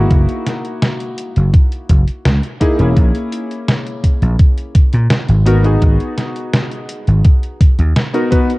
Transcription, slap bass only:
0, 0, Header, 1, 3, 480
1, 0, Start_track
1, 0, Key_signature, 5, "minor"
1, 0, Tempo, 714286
1, 73, Time_signature, 4, 2, 24, 8
1, 5770, End_track
2, 0, Start_track
2, 0, Title_t, "Slap bass"
2, 0, Program_c, 0, 36
2, 73, Note_on_c, 0, 30, 94
2, 166, Note_off_c, 0, 30, 0
2, 918, Note_on_c, 0, 30, 81
2, 1007, Note_off_c, 0, 30, 0
2, 1275, Note_on_c, 0, 30, 77
2, 1367, Note_off_c, 0, 30, 0
2, 1515, Note_on_c, 0, 37, 94
2, 1607, Note_off_c, 0, 37, 0
2, 1877, Note_on_c, 0, 28, 88
2, 1966, Note_off_c, 0, 28, 0
2, 1994, Note_on_c, 0, 34, 98
2, 2087, Note_off_c, 0, 34, 0
2, 2837, Note_on_c, 0, 34, 80
2, 2926, Note_off_c, 0, 34, 0
2, 3318, Note_on_c, 0, 46, 79
2, 3407, Note_off_c, 0, 46, 0
2, 3553, Note_on_c, 0, 32, 87
2, 3868, Note_off_c, 0, 32, 0
2, 3914, Note_on_c, 0, 32, 100
2, 4007, Note_off_c, 0, 32, 0
2, 4755, Note_on_c, 0, 32, 79
2, 4845, Note_off_c, 0, 32, 0
2, 5234, Note_on_c, 0, 39, 81
2, 5325, Note_off_c, 0, 39, 0
2, 5770, End_track
3, 0, Start_track
3, 0, Title_t, "Muted slap bass strokes"
3, 1398, Note_on_c, 9, 29, 41
3, 1465, Note_off_c, 9, 29, 0
3, 5770, End_track
0, 0, End_of_file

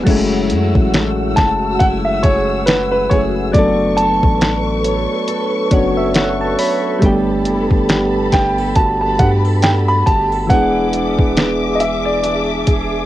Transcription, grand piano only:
0, 0, Header, 1, 2, 480
1, 0, Start_track
1, 0, Key_signature, 3, "minor"
1, 0, Tempo, 869565
1, 36, Time_signature, 4, 2, 24, 8
1, 7207, End_track
2, 0, Start_track
2, 0, Title_t, "Grand piano"
2, 0, Program_c, 0, 0
2, 751, Note_on_c, 0, 81, 106
2, 977, Note_off_c, 0, 81, 0
2, 990, Note_on_c, 0, 78, 106
2, 1022, Note_off_c, 0, 78, 0
2, 1131, Note_on_c, 0, 76, 88
2, 1231, Note_on_c, 0, 73, 92
2, 1237, Note_off_c, 0, 76, 0
2, 1468, Note_on_c, 0, 71, 85
2, 1481, Note_off_c, 0, 73, 0
2, 1600, Note_off_c, 0, 71, 0
2, 1608, Note_on_c, 0, 71, 86
2, 1708, Note_on_c, 0, 73, 88
2, 1715, Note_off_c, 0, 71, 0
2, 1763, Note_off_c, 0, 73, 0
2, 1949, Note_on_c, 0, 74, 99
2, 2189, Note_on_c, 0, 81, 99
2, 2199, Note_off_c, 0, 74, 0
2, 3131, Note_off_c, 0, 81, 0
2, 4597, Note_on_c, 0, 79, 96
2, 4820, Note_off_c, 0, 79, 0
2, 4835, Note_on_c, 0, 81, 100
2, 4965, Note_off_c, 0, 81, 0
2, 4974, Note_on_c, 0, 81, 95
2, 5073, Note_on_c, 0, 78, 97
2, 5078, Note_off_c, 0, 81, 0
2, 5127, Note_off_c, 0, 78, 0
2, 5313, Note_on_c, 0, 79, 94
2, 5345, Note_off_c, 0, 79, 0
2, 5455, Note_on_c, 0, 83, 102
2, 5554, Note_on_c, 0, 81, 103
2, 5559, Note_off_c, 0, 83, 0
2, 5778, Note_off_c, 0, 81, 0
2, 5794, Note_on_c, 0, 78, 107
2, 6488, Note_on_c, 0, 75, 68
2, 6510, Note_off_c, 0, 78, 0
2, 6514, Note_on_c, 0, 76, 85
2, 6515, Note_off_c, 0, 75, 0
2, 6653, Note_on_c, 0, 74, 78
2, 6658, Note_off_c, 0, 76, 0
2, 7207, Note_off_c, 0, 74, 0
2, 7207, End_track
0, 0, End_of_file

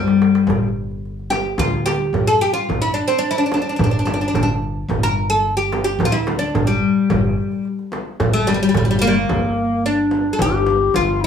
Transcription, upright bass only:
0, 0, Header, 1, 2, 480
1, 0, Start_track
1, 0, Tempo, 550964
1, 418, Time_signature, 4, 2, 24, 8
1, 9817, End_track
2, 0, Start_track
2, 0, Title_t, "Upright bass"
2, 0, Program_c, 0, 32
2, 0, Note_on_c, 0, 31, 77
2, 382, Note_off_c, 0, 31, 0
2, 410, Note_on_c, 0, 31, 80
2, 1343, Note_off_c, 0, 31, 0
2, 1377, Note_on_c, 0, 38, 84
2, 1826, Note_off_c, 0, 38, 0
2, 1855, Note_on_c, 0, 31, 78
2, 2079, Note_off_c, 0, 31, 0
2, 2342, Note_on_c, 0, 31, 90
2, 2563, Note_off_c, 0, 31, 0
2, 3303, Note_on_c, 0, 31, 93
2, 3752, Note_off_c, 0, 31, 0
2, 3781, Note_on_c, 0, 31, 81
2, 4231, Note_off_c, 0, 31, 0
2, 4256, Note_on_c, 0, 31, 91
2, 5189, Note_off_c, 0, 31, 0
2, 5216, Note_on_c, 0, 38, 89
2, 5668, Note_off_c, 0, 38, 0
2, 5710, Note_on_c, 0, 31, 83
2, 5930, Note_off_c, 0, 31, 0
2, 6186, Note_on_c, 0, 31, 102
2, 6407, Note_off_c, 0, 31, 0
2, 7146, Note_on_c, 0, 31, 93
2, 7591, Note_off_c, 0, 31, 0
2, 7622, Note_on_c, 0, 31, 85
2, 8068, Note_off_c, 0, 31, 0
2, 8106, Note_on_c, 0, 31, 83
2, 9026, Note_off_c, 0, 31, 0
2, 9053, Note_on_c, 0, 31, 86
2, 9499, Note_off_c, 0, 31, 0
2, 9531, Note_on_c, 0, 31, 83
2, 9817, Note_off_c, 0, 31, 0
2, 9817, End_track
0, 0, End_of_file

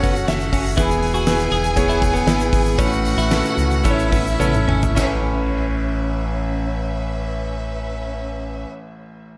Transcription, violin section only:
0, 0, Header, 1, 2, 480
1, 0, Start_track
1, 0, Key_signature, 3, "major"
1, 0, Tempo, 497925
1, 745, Time_signature, 4, 2, 24, 8
1, 2191, Tempo, 525855
1, 3631, Tempo, 562324
1, 4591, Tempo, 580833
1, 8229, End_track
2, 0, Start_track
2, 0, Title_t, "Violin section"
2, 0, Program_c, 0, 48
2, 0, Note_on_c, 0, 66, 78
2, 0, Note_on_c, 0, 78, 86
2, 705, Note_off_c, 0, 66, 0
2, 706, Note_off_c, 0, 78, 0
2, 743, Note_on_c, 0, 68, 88
2, 743, Note_on_c, 0, 80, 95
2, 2623, Note_off_c, 0, 68, 0
2, 2623, Note_off_c, 0, 80, 0
2, 2659, Note_on_c, 0, 78, 97
2, 2660, Note_on_c, 0, 66, 86
2, 3611, Note_off_c, 0, 66, 0
2, 3611, Note_off_c, 0, 78, 0
2, 3628, Note_on_c, 0, 64, 86
2, 3628, Note_on_c, 0, 76, 90
2, 4570, Note_off_c, 0, 76, 0
2, 4571, Note_off_c, 0, 64, 0
2, 4587, Note_on_c, 0, 61, 87
2, 4589, Note_on_c, 0, 71, 87
2, 4590, Note_on_c, 0, 76, 96
2, 7632, Note_off_c, 0, 61, 0
2, 7634, Note_off_c, 0, 71, 0
2, 7635, Note_off_c, 0, 76, 0
2, 8229, End_track
0, 0, End_of_file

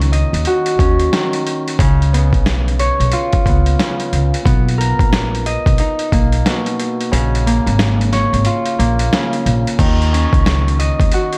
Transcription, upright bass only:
0, 0, Header, 1, 2, 480
1, 0, Start_track
1, 0, Key_signature, -6, "minor"
1, 0, Tempo, 666667
1, 1288, Time_signature, 4, 2, 24, 8
1, 8193, End_track
2, 0, Start_track
2, 0, Title_t, "Upright bass"
2, 0, Program_c, 0, 32
2, 0, Note_on_c, 0, 37, 92
2, 158, Note_off_c, 0, 37, 0
2, 238, Note_on_c, 0, 39, 86
2, 314, Note_off_c, 0, 39, 0
2, 570, Note_on_c, 0, 39, 87
2, 770, Note_off_c, 0, 39, 0
2, 1290, Note_on_c, 0, 37, 98
2, 1677, Note_off_c, 0, 37, 0
2, 1677, Note_on_c, 0, 35, 91
2, 2078, Note_off_c, 0, 35, 0
2, 2159, Note_on_c, 0, 35, 87
2, 2235, Note_off_c, 0, 35, 0
2, 2491, Note_on_c, 0, 37, 94
2, 2691, Note_off_c, 0, 37, 0
2, 2971, Note_on_c, 0, 37, 86
2, 3093, Note_off_c, 0, 37, 0
2, 3209, Note_on_c, 0, 35, 98
2, 3533, Note_off_c, 0, 35, 0
2, 3597, Note_on_c, 0, 34, 90
2, 3998, Note_off_c, 0, 34, 0
2, 4077, Note_on_c, 0, 35, 91
2, 4154, Note_off_c, 0, 35, 0
2, 4410, Note_on_c, 0, 35, 79
2, 4610, Note_off_c, 0, 35, 0
2, 5131, Note_on_c, 0, 34, 101
2, 5455, Note_off_c, 0, 34, 0
2, 5518, Note_on_c, 0, 32, 94
2, 5919, Note_off_c, 0, 32, 0
2, 5997, Note_on_c, 0, 32, 89
2, 6074, Note_off_c, 0, 32, 0
2, 6331, Note_on_c, 0, 34, 92
2, 6531, Note_off_c, 0, 34, 0
2, 6812, Note_on_c, 0, 34, 90
2, 6933, Note_off_c, 0, 34, 0
2, 7049, Note_on_c, 0, 39, 106
2, 7373, Note_off_c, 0, 39, 0
2, 7437, Note_on_c, 0, 37, 89
2, 7838, Note_off_c, 0, 37, 0
2, 7919, Note_on_c, 0, 39, 88
2, 7995, Note_off_c, 0, 39, 0
2, 8193, End_track
0, 0, End_of_file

